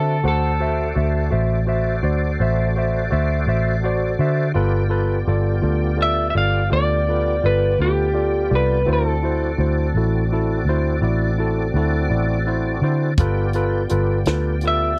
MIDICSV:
0, 0, Header, 1, 6, 480
1, 0, Start_track
1, 0, Tempo, 719424
1, 159, Time_signature, 12, 3, 24, 8
1, 10003, End_track
2, 0, Start_track
2, 0, Title_t, "Clean electric guitar"
2, 0, Program_c, 0, 27
2, 0, Note_on_c, 0, 69, 73
2, 177, Note_off_c, 0, 69, 0
2, 185, Note_on_c, 0, 69, 70
2, 865, Note_off_c, 0, 69, 0
2, 4019, Note_on_c, 0, 76, 85
2, 4189, Note_off_c, 0, 76, 0
2, 4205, Note_on_c, 0, 76, 70
2, 4246, Note_off_c, 0, 76, 0
2, 4253, Note_on_c, 0, 77, 92
2, 4470, Note_off_c, 0, 77, 0
2, 4490, Note_on_c, 0, 74, 90
2, 4976, Note_on_c, 0, 71, 75
2, 4979, Note_off_c, 0, 74, 0
2, 5192, Note_off_c, 0, 71, 0
2, 5214, Note_on_c, 0, 67, 80
2, 5701, Note_off_c, 0, 67, 0
2, 5706, Note_on_c, 0, 71, 78
2, 5940, Note_off_c, 0, 71, 0
2, 5957, Note_on_c, 0, 69, 70
2, 6632, Note_off_c, 0, 69, 0
2, 9791, Note_on_c, 0, 76, 82
2, 10003, Note_off_c, 0, 76, 0
2, 10003, End_track
3, 0, Start_track
3, 0, Title_t, "Tine electric piano"
3, 0, Program_c, 1, 4
3, 0, Note_on_c, 1, 66, 52
3, 0, Note_on_c, 1, 72, 44
3, 0, Note_on_c, 1, 76, 53
3, 106, Note_off_c, 1, 66, 0
3, 106, Note_off_c, 1, 72, 0
3, 109, Note_off_c, 1, 76, 0
3, 157, Note_on_c, 1, 66, 60
3, 164, Note_on_c, 1, 72, 54
3, 170, Note_on_c, 1, 78, 61
3, 338, Note_off_c, 1, 66, 0
3, 342, Note_off_c, 1, 72, 0
3, 344, Note_off_c, 1, 78, 0
3, 400, Note_on_c, 1, 66, 52
3, 402, Note_on_c, 1, 72, 49
3, 412, Note_on_c, 1, 76, 60
3, 580, Note_off_c, 1, 66, 0
3, 581, Note_off_c, 1, 72, 0
3, 586, Note_off_c, 1, 76, 0
3, 637, Note_on_c, 1, 66, 50
3, 648, Note_on_c, 1, 72, 46
3, 648, Note_on_c, 1, 76, 54
3, 818, Note_off_c, 1, 66, 0
3, 824, Note_off_c, 1, 72, 0
3, 824, Note_off_c, 1, 76, 0
3, 870, Note_on_c, 1, 66, 57
3, 878, Note_on_c, 1, 72, 51
3, 881, Note_on_c, 1, 76, 63
3, 1055, Note_off_c, 1, 66, 0
3, 1059, Note_off_c, 1, 72, 0
3, 1060, Note_off_c, 1, 76, 0
3, 1113, Note_on_c, 1, 66, 57
3, 1117, Note_on_c, 1, 72, 55
3, 1125, Note_on_c, 1, 76, 66
3, 1296, Note_off_c, 1, 66, 0
3, 1298, Note_off_c, 1, 72, 0
3, 1302, Note_off_c, 1, 76, 0
3, 1352, Note_on_c, 1, 66, 59
3, 1357, Note_on_c, 1, 72, 55
3, 1365, Note_on_c, 1, 74, 67
3, 1536, Note_off_c, 1, 66, 0
3, 1538, Note_off_c, 1, 72, 0
3, 1542, Note_off_c, 1, 74, 0
3, 1602, Note_on_c, 1, 66, 58
3, 1606, Note_on_c, 1, 72, 56
3, 1614, Note_on_c, 1, 76, 67
3, 1780, Note_off_c, 1, 66, 0
3, 1783, Note_off_c, 1, 72, 0
3, 1787, Note_off_c, 1, 76, 0
3, 1842, Note_on_c, 1, 66, 58
3, 1850, Note_on_c, 1, 72, 55
3, 1857, Note_on_c, 1, 76, 60
3, 2020, Note_off_c, 1, 66, 0
3, 2024, Note_off_c, 1, 72, 0
3, 2028, Note_off_c, 1, 76, 0
3, 2072, Note_on_c, 1, 66, 61
3, 2080, Note_on_c, 1, 72, 57
3, 2085, Note_on_c, 1, 76, 66
3, 2255, Note_off_c, 1, 66, 0
3, 2260, Note_off_c, 1, 72, 0
3, 2262, Note_off_c, 1, 76, 0
3, 2317, Note_on_c, 1, 66, 58
3, 2325, Note_on_c, 1, 72, 54
3, 2327, Note_on_c, 1, 76, 65
3, 2498, Note_off_c, 1, 66, 0
3, 2502, Note_off_c, 1, 72, 0
3, 2503, Note_off_c, 1, 76, 0
3, 2561, Note_on_c, 1, 66, 62
3, 2569, Note_on_c, 1, 72, 58
3, 2571, Note_on_c, 1, 74, 70
3, 2740, Note_off_c, 1, 66, 0
3, 2744, Note_off_c, 1, 72, 0
3, 2745, Note_off_c, 1, 74, 0
3, 2796, Note_on_c, 1, 66, 59
3, 2798, Note_on_c, 1, 72, 58
3, 2806, Note_on_c, 1, 76, 67
3, 2978, Note_off_c, 1, 66, 0
3, 2978, Note_off_c, 1, 72, 0
3, 2983, Note_off_c, 1, 76, 0
3, 3031, Note_on_c, 1, 65, 69
3, 3040, Note_on_c, 1, 69, 66
3, 3041, Note_on_c, 1, 71, 74
3, 3215, Note_off_c, 1, 65, 0
3, 3220, Note_off_c, 1, 69, 0
3, 3220, Note_off_c, 1, 71, 0
3, 3263, Note_on_c, 1, 65, 62
3, 3269, Note_on_c, 1, 69, 59
3, 3276, Note_on_c, 1, 71, 73
3, 3451, Note_off_c, 1, 65, 0
3, 3454, Note_off_c, 1, 69, 0
3, 3457, Note_off_c, 1, 71, 0
3, 3520, Note_on_c, 1, 65, 62
3, 3521, Note_on_c, 1, 69, 60
3, 3529, Note_on_c, 1, 74, 70
3, 3700, Note_off_c, 1, 65, 0
3, 3700, Note_off_c, 1, 69, 0
3, 3704, Note_off_c, 1, 74, 0
3, 3748, Note_on_c, 1, 65, 58
3, 3758, Note_on_c, 1, 69, 52
3, 3760, Note_on_c, 1, 74, 63
3, 3933, Note_off_c, 1, 65, 0
3, 3939, Note_off_c, 1, 69, 0
3, 3940, Note_off_c, 1, 74, 0
3, 3985, Note_on_c, 1, 65, 49
3, 3985, Note_on_c, 1, 69, 48
3, 3993, Note_on_c, 1, 74, 58
3, 4172, Note_off_c, 1, 65, 0
3, 4172, Note_off_c, 1, 69, 0
3, 4176, Note_off_c, 1, 74, 0
3, 4232, Note_on_c, 1, 65, 53
3, 4234, Note_on_c, 1, 69, 45
3, 4244, Note_on_c, 1, 74, 58
3, 4416, Note_off_c, 1, 65, 0
3, 4417, Note_off_c, 1, 69, 0
3, 4422, Note_off_c, 1, 74, 0
3, 4472, Note_on_c, 1, 65, 53
3, 4476, Note_on_c, 1, 69, 46
3, 4486, Note_on_c, 1, 74, 60
3, 4656, Note_off_c, 1, 65, 0
3, 4658, Note_off_c, 1, 69, 0
3, 4663, Note_off_c, 1, 74, 0
3, 4728, Note_on_c, 1, 65, 51
3, 4728, Note_on_c, 1, 69, 45
3, 4737, Note_on_c, 1, 71, 55
3, 4904, Note_off_c, 1, 65, 0
3, 4904, Note_off_c, 1, 69, 0
3, 4908, Note_off_c, 1, 71, 0
3, 4960, Note_on_c, 1, 65, 50
3, 4966, Note_on_c, 1, 69, 45
3, 4971, Note_on_c, 1, 74, 58
3, 5140, Note_off_c, 1, 65, 0
3, 5143, Note_off_c, 1, 69, 0
3, 5145, Note_off_c, 1, 74, 0
3, 5204, Note_on_c, 1, 65, 47
3, 5209, Note_on_c, 1, 69, 45
3, 5220, Note_on_c, 1, 71, 54
3, 5382, Note_off_c, 1, 65, 0
3, 5384, Note_off_c, 1, 69, 0
3, 5390, Note_off_c, 1, 71, 0
3, 5428, Note_on_c, 1, 65, 51
3, 5434, Note_on_c, 1, 69, 47
3, 5436, Note_on_c, 1, 74, 56
3, 5614, Note_off_c, 1, 65, 0
3, 5617, Note_off_c, 1, 69, 0
3, 5618, Note_off_c, 1, 74, 0
3, 5672, Note_on_c, 1, 65, 52
3, 5676, Note_on_c, 1, 69, 46
3, 5678, Note_on_c, 1, 74, 58
3, 5856, Note_off_c, 1, 65, 0
3, 5858, Note_off_c, 1, 69, 0
3, 5859, Note_off_c, 1, 74, 0
3, 5911, Note_on_c, 1, 64, 59
3, 5917, Note_on_c, 1, 66, 53
3, 5924, Note_on_c, 1, 72, 64
3, 6096, Note_off_c, 1, 64, 0
3, 6099, Note_off_c, 1, 66, 0
3, 6102, Note_off_c, 1, 72, 0
3, 6157, Note_on_c, 1, 64, 54
3, 6158, Note_on_c, 1, 66, 49
3, 6170, Note_on_c, 1, 72, 60
3, 6338, Note_off_c, 1, 64, 0
3, 6339, Note_off_c, 1, 66, 0
3, 6345, Note_off_c, 1, 72, 0
3, 6392, Note_on_c, 1, 64, 49
3, 6399, Note_on_c, 1, 66, 47
3, 6405, Note_on_c, 1, 72, 55
3, 6576, Note_off_c, 1, 64, 0
3, 6579, Note_off_c, 1, 66, 0
3, 6582, Note_off_c, 1, 72, 0
3, 6651, Note_on_c, 1, 64, 54
3, 6654, Note_on_c, 1, 66, 52
3, 6654, Note_on_c, 1, 69, 58
3, 6826, Note_off_c, 1, 64, 0
3, 6827, Note_off_c, 1, 66, 0
3, 6827, Note_off_c, 1, 69, 0
3, 6889, Note_on_c, 1, 64, 60
3, 6891, Note_on_c, 1, 66, 53
3, 6897, Note_on_c, 1, 69, 66
3, 7064, Note_off_c, 1, 64, 0
3, 7065, Note_off_c, 1, 66, 0
3, 7069, Note_off_c, 1, 69, 0
3, 7132, Note_on_c, 1, 64, 58
3, 7133, Note_on_c, 1, 72, 70
3, 7134, Note_on_c, 1, 66, 52
3, 7306, Note_off_c, 1, 64, 0
3, 7306, Note_off_c, 1, 72, 0
3, 7307, Note_off_c, 1, 66, 0
3, 7354, Note_on_c, 1, 64, 59
3, 7361, Note_on_c, 1, 66, 56
3, 7366, Note_on_c, 1, 74, 66
3, 7537, Note_off_c, 1, 64, 0
3, 7540, Note_off_c, 1, 66, 0
3, 7543, Note_off_c, 1, 74, 0
3, 7594, Note_on_c, 1, 64, 55
3, 7605, Note_on_c, 1, 66, 50
3, 7606, Note_on_c, 1, 69, 65
3, 7777, Note_off_c, 1, 64, 0
3, 7782, Note_off_c, 1, 66, 0
3, 7783, Note_off_c, 1, 69, 0
3, 7846, Note_on_c, 1, 64, 60
3, 7850, Note_on_c, 1, 66, 53
3, 7858, Note_on_c, 1, 69, 66
3, 8023, Note_off_c, 1, 64, 0
3, 8025, Note_off_c, 1, 66, 0
3, 8029, Note_off_c, 1, 69, 0
3, 8071, Note_on_c, 1, 64, 55
3, 8076, Note_on_c, 1, 66, 49
3, 8079, Note_on_c, 1, 74, 58
3, 8255, Note_off_c, 1, 64, 0
3, 8258, Note_off_c, 1, 66, 0
3, 8259, Note_off_c, 1, 74, 0
3, 8320, Note_on_c, 1, 64, 58
3, 8324, Note_on_c, 1, 66, 57
3, 8327, Note_on_c, 1, 72, 65
3, 8500, Note_off_c, 1, 64, 0
3, 8501, Note_off_c, 1, 66, 0
3, 8503, Note_off_c, 1, 72, 0
3, 8560, Note_on_c, 1, 64, 56
3, 8562, Note_on_c, 1, 66, 53
3, 8566, Note_on_c, 1, 72, 64
3, 8740, Note_off_c, 1, 64, 0
3, 8740, Note_off_c, 1, 66, 0
3, 8742, Note_off_c, 1, 72, 0
3, 8798, Note_on_c, 1, 65, 66
3, 8801, Note_on_c, 1, 69, 65
3, 8810, Note_on_c, 1, 71, 76
3, 8978, Note_off_c, 1, 65, 0
3, 8980, Note_off_c, 1, 69, 0
3, 8984, Note_off_c, 1, 71, 0
3, 9039, Note_on_c, 1, 65, 65
3, 9045, Note_on_c, 1, 71, 73
3, 9046, Note_on_c, 1, 69, 62
3, 9219, Note_off_c, 1, 65, 0
3, 9222, Note_off_c, 1, 69, 0
3, 9222, Note_off_c, 1, 71, 0
3, 9274, Note_on_c, 1, 65, 63
3, 9280, Note_on_c, 1, 69, 57
3, 9284, Note_on_c, 1, 71, 66
3, 9456, Note_off_c, 1, 65, 0
3, 9459, Note_off_c, 1, 69, 0
3, 9461, Note_off_c, 1, 71, 0
3, 9521, Note_on_c, 1, 65, 54
3, 9525, Note_on_c, 1, 69, 52
3, 9531, Note_on_c, 1, 71, 62
3, 9700, Note_off_c, 1, 65, 0
3, 9701, Note_off_c, 1, 69, 0
3, 9704, Note_off_c, 1, 71, 0
3, 9765, Note_on_c, 1, 65, 51
3, 9768, Note_on_c, 1, 69, 45
3, 9774, Note_on_c, 1, 71, 52
3, 9941, Note_off_c, 1, 65, 0
3, 9943, Note_off_c, 1, 69, 0
3, 9946, Note_off_c, 1, 71, 0
3, 10003, End_track
4, 0, Start_track
4, 0, Title_t, "Tonewheel organ"
4, 0, Program_c, 2, 16
4, 0, Note_on_c, 2, 60, 57
4, 0, Note_on_c, 2, 66, 58
4, 0, Note_on_c, 2, 69, 58
4, 0, Note_on_c, 2, 74, 55
4, 138, Note_off_c, 2, 60, 0
4, 138, Note_off_c, 2, 66, 0
4, 138, Note_off_c, 2, 69, 0
4, 139, Note_off_c, 2, 74, 0
4, 166, Note_on_c, 2, 72, 60
4, 167, Note_on_c, 2, 74, 57
4, 170, Note_on_c, 2, 69, 59
4, 175, Note_on_c, 2, 66, 60
4, 3015, Note_off_c, 2, 72, 0
4, 3016, Note_off_c, 2, 74, 0
4, 3018, Note_off_c, 2, 69, 0
4, 3020, Note_off_c, 2, 66, 0
4, 3028, Note_on_c, 2, 74, 59
4, 3029, Note_on_c, 2, 67, 59
4, 3034, Note_on_c, 2, 65, 58
4, 3036, Note_on_c, 2, 59, 61
4, 5888, Note_off_c, 2, 67, 0
4, 5888, Note_off_c, 2, 74, 0
4, 5890, Note_off_c, 2, 65, 0
4, 5892, Note_off_c, 2, 59, 0
4, 5903, Note_on_c, 2, 66, 58
4, 5906, Note_on_c, 2, 60, 59
4, 5906, Note_on_c, 2, 74, 60
4, 5908, Note_on_c, 2, 69, 61
4, 8764, Note_off_c, 2, 66, 0
4, 8765, Note_off_c, 2, 60, 0
4, 8766, Note_off_c, 2, 69, 0
4, 8766, Note_off_c, 2, 74, 0
4, 8801, Note_on_c, 2, 65, 60
4, 8804, Note_on_c, 2, 59, 57
4, 8805, Note_on_c, 2, 74, 54
4, 8806, Note_on_c, 2, 67, 55
4, 10003, Note_off_c, 2, 59, 0
4, 10003, Note_off_c, 2, 65, 0
4, 10003, Note_off_c, 2, 67, 0
4, 10003, Note_off_c, 2, 74, 0
4, 10003, End_track
5, 0, Start_track
5, 0, Title_t, "Fingered electric bass"
5, 0, Program_c, 3, 33
5, 0, Note_on_c, 3, 50, 81
5, 144, Note_off_c, 3, 50, 0
5, 159, Note_on_c, 3, 38, 77
5, 612, Note_off_c, 3, 38, 0
5, 642, Note_on_c, 3, 38, 81
5, 862, Note_off_c, 3, 38, 0
5, 882, Note_on_c, 3, 33, 101
5, 1334, Note_off_c, 3, 33, 0
5, 1353, Note_on_c, 3, 38, 75
5, 1577, Note_off_c, 3, 38, 0
5, 1601, Note_on_c, 3, 33, 97
5, 2053, Note_off_c, 3, 33, 0
5, 2082, Note_on_c, 3, 38, 78
5, 2301, Note_off_c, 3, 38, 0
5, 2313, Note_on_c, 3, 33, 78
5, 2769, Note_off_c, 3, 33, 0
5, 2796, Note_on_c, 3, 50, 86
5, 3018, Note_off_c, 3, 50, 0
5, 3037, Note_on_c, 3, 31, 86
5, 3491, Note_off_c, 3, 31, 0
5, 3519, Note_on_c, 3, 31, 79
5, 3740, Note_off_c, 3, 31, 0
5, 3754, Note_on_c, 3, 38, 100
5, 4210, Note_off_c, 3, 38, 0
5, 4236, Note_on_c, 3, 31, 74
5, 4459, Note_off_c, 3, 31, 0
5, 4482, Note_on_c, 3, 38, 97
5, 4934, Note_off_c, 3, 38, 0
5, 4962, Note_on_c, 3, 31, 75
5, 5182, Note_off_c, 3, 31, 0
5, 5198, Note_on_c, 3, 38, 73
5, 5652, Note_off_c, 3, 38, 0
5, 5680, Note_on_c, 3, 36, 83
5, 5900, Note_off_c, 3, 36, 0
5, 5919, Note_on_c, 3, 38, 80
5, 6373, Note_off_c, 3, 38, 0
5, 6394, Note_on_c, 3, 38, 77
5, 6618, Note_off_c, 3, 38, 0
5, 6635, Note_on_c, 3, 33, 95
5, 7091, Note_off_c, 3, 33, 0
5, 7106, Note_on_c, 3, 38, 70
5, 7333, Note_off_c, 3, 38, 0
5, 7350, Note_on_c, 3, 33, 94
5, 7808, Note_off_c, 3, 33, 0
5, 7833, Note_on_c, 3, 38, 78
5, 8057, Note_off_c, 3, 38, 0
5, 8073, Note_on_c, 3, 33, 73
5, 8529, Note_off_c, 3, 33, 0
5, 8551, Note_on_c, 3, 50, 80
5, 8775, Note_off_c, 3, 50, 0
5, 8795, Note_on_c, 3, 31, 82
5, 9250, Note_off_c, 3, 31, 0
5, 9282, Note_on_c, 3, 31, 76
5, 9501, Note_off_c, 3, 31, 0
5, 9518, Note_on_c, 3, 38, 94
5, 9971, Note_off_c, 3, 38, 0
5, 10003, End_track
6, 0, Start_track
6, 0, Title_t, "Drums"
6, 8790, Note_on_c, 9, 42, 71
6, 8793, Note_on_c, 9, 36, 99
6, 8857, Note_off_c, 9, 42, 0
6, 8860, Note_off_c, 9, 36, 0
6, 9028, Note_on_c, 9, 42, 50
6, 9095, Note_off_c, 9, 42, 0
6, 9269, Note_on_c, 9, 42, 51
6, 9336, Note_off_c, 9, 42, 0
6, 9510, Note_on_c, 9, 42, 68
6, 9522, Note_on_c, 9, 38, 95
6, 9577, Note_off_c, 9, 42, 0
6, 9589, Note_off_c, 9, 38, 0
6, 9747, Note_on_c, 9, 42, 55
6, 9814, Note_off_c, 9, 42, 0
6, 10003, End_track
0, 0, End_of_file